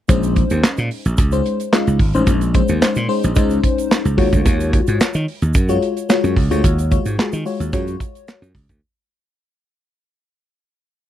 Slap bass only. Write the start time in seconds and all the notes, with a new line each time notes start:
0.09 A#1
0.51 D#2
0.78 A#2
1.06 A#1
1.18 C#2
1.87 C#2
2.00 G#1
2.15 A1
2.27 A#1
2.69 D#2
2.82 muted slap bass stroke
2.96 A#2
3.24 A#1
3.37 C#2
4.05 C#2
4.18 D#2
4.33 D2
4.45 D#2
4.88 G#2
5.00 muted slap bass stroke
5.15 D#3
5.42 D#2
5.55 F#2
6.24 F#2
6.37 C#2
6.51 D2
6.64 D#2
7.06 G#2
7.18 muted slap bass stroke
7.33 D#3
7.60 D#2
7.73 F#2
8.42 F#2
8.55 C#2
8.69 D2